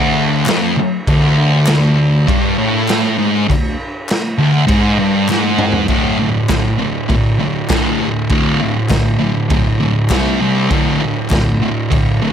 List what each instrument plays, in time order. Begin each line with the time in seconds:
Already playing: distorted electric guitar D2
0.46 distorted electric guitar F2, snare, clap, crash
0.77 muted distorted electric guitar stroke
1.07 distorted electric guitar D2, kick, crash
1.66 snare, clap, crash
2.28 distorted electric guitar G2, kick, crash
2.58 distorted electric guitar A2
2.88 snare, clap, crash
3.19 distorted electric guitar G#2
3.49 distorted electric guitar D2, kick, crash
4.09 snare, clap, crash
4.38 distorted electric guitar D2
4.67 distorted electric guitar G#2, kick, crash
4.99 distorted electric guitar G2
5.29 distorted electric guitar G#2, snare, clap
5.59 mid tom
5.72 floor tom
5.88 distorted electric guitar D2 A2 D3, kick, crash
6.20 distorted electric guitar D2 A2
6.48 distorted electric guitar D2 A2, kick, snare, clap, crash
6.78 distorted electric guitar D2 A2
7.09 distorted electric guitar D2 A2, kick, crash
7.39 distorted electric guitar D2 A2
7.69 distorted electric guitar D2 A2 D3, kick, snare, clap, crash
8.00 distorted electric guitar D2 A2
8.29 distorted electric guitar D2 A2 D3, kick, crash
8.61 distorted electric guitar D2 A2
8.89 distorted electric guitar D2 A2, kick, snare, clap, crash
9.19 distorted electric guitar D2 A2
9.50 distorted electric guitar D2 A2, kick, crash
9.80 distorted electric guitar D2 A2
10.10 distorted electric guitar C3 G3 C4, kick, snare, clap, crash
10.40 distorted electric guitar C3 G3 C4
10.70 distorted electric guitar D2 A2 D3, kick, crash
11.01 distorted electric guitar D2 A2
11.30 distorted electric guitar D2 A2, kick, snare, clap, crash
11.62 distorted electric guitar D2 A2
11.90 distorted electric guitar D2 A2, kick, crash
12.22 distorted electric guitar D2 A2